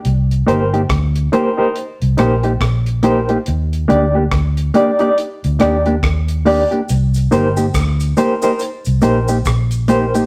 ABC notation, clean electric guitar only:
X:1
M:4/4
L:1/16
Q:"Swing 16ths" 1/4=70
K:Cm
V:1 name="Clean electric guitar"
z2 [B,EG] [B,EG] z2 [B,EG] [B,EG] z2 [B,EG] [B,EG] z2 [B,EG] [B,EG] | z2 [B,DG] [B,DG] z2 [B,DG] [B,DG] z2 [B,DG] [B,DG] z2 [B,DG] [B,DG] | z2 [B,EG] [B,EG] z2 [B,EG] [B,EG] z2 [B,EG] [B,EG] z2 [B,EG] [B,EG] |]